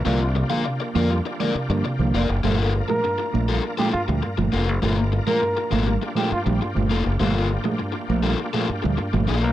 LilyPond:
<<
  \new Staff \with { instrumentName = "Trombone" } { \time 4/4 \key g \dorian \tempo 4 = 101 r1 | r8. bes'8. r8. g'16 f'16 r4 r16 | r8. bes'8. r8. g'16 f'16 r4 r16 | r1 | }
  \new Staff \with { instrumentName = "Tonewheel organ" } { \time 4/4 \key g \dorian << { g'1 | bes'1~ | bes'2 g'2~ | g'1 | } \\ { <bes d' f'>1~ | <bes d' f'>1~ | <bes d' f'>1~ | <bes d' f'>1 | } >> }
  \new Staff \with { instrumentName = "Overdriven electric guitar" } { \time 4/4 \key g \dorian <f' bes' d''>16 r8 <f' bes' f''>16 r8 <f' bes' d''>16 r8 <f' bes' d''>16 r4 <f' bes' d''>16 r16 | <bes f' a'>8 r4 r16 <bes f' a'>16 r16 <bes f' a'>16 r4 <bes f' a'>16 r16 | <bes f' a'>16 r8 <bes f' bes'>16 r8 <bes f' a'>16 r8 <bes f' a'>16 r4 <bes f' a'>16 r16 | <bes f' a'>8 r4 r16 <bes f' a'>16 r16 <bes f' a'>16 r4 <bes f' a'>16 r16 | }
  \new Staff \with { instrumentName = "Clean electric guitar" } { \clef bass \time 4/4 \key g \dorian c'16 r8 aes16 r8 bes16 g16 r16 aes16 r16 g16 r16 f16 bes16 r16 | g16 r8 aes16 r8 bes16 g16 r16 aes16 r16 g16 r16 f16 bes16 r16 | g16 r8 aes16 r8 bes16 g16 r16 aes16 r16 g16 r16 f16 bes16 r16 | g16 r8 aes16 r8 bes16 g16 r16 aes16 r16 g16 r16 f16 bes16 r16 | }
  \new Staff \with { instrumentName = "Tine electric piano" } { \clef bass \time 4/4 \key g \dorian << { <d f bes>16 r8 <d f bes>16 r8 <d f bes>16 r8 <d f bes>16 r16 <d f bes>16 r16 <d f bes>16 <f bes>16 r16 | <bes, f a>16 r8 <bes, f a>16 r8 <bes, f a>16 <f a>16 r16 <bes, f a>16 r16 <bes, f a>16 r16 <bes, f a>16 r8 | <bes, f a>16 r8 <bes, f a>16 r8 <bes, f a>16 <f a>16 r16 <bes, f a>16 r16 <bes, f a>16 r16 <bes, f a>16 <f a>16 r16 | <bes, f a>16 r8 <bes, f a>16 r8 <bes, f a>16 r8 <bes, f a>16 r16 <bes, f a>16 r16 <bes, f a>16 <f a>16 r16 | } \\ { r8 c8 c8 r4 c8 c8 r8 | r8 g,8 g,8 r4 g,8 g,8 r8 | r8 g,8 g,8 r4 g,8 g,8 r8 | r8 g,8 g,8 r4 g,8 g,8 r8 | } >> }
  \new Staff \with { instrumentName = "Fingered electric bass" } { \clef bass \time 4/4 \key g \dorian c,8. r8. f,8 r8. g,16 r16 c,16 f,,16 ges,,16 | g,,8. r8. bes,,8 r8. d,16 r16 g,,16 f,,16 ges,,16 | g,,8. r8. aes,,8 r8. bes,,16 r16 g,,16 f,,16 ges,,16 | g,,8. r8. bes,,8 r8. d,16 r16 g,,16 bes,,16 b,,16 | }
>>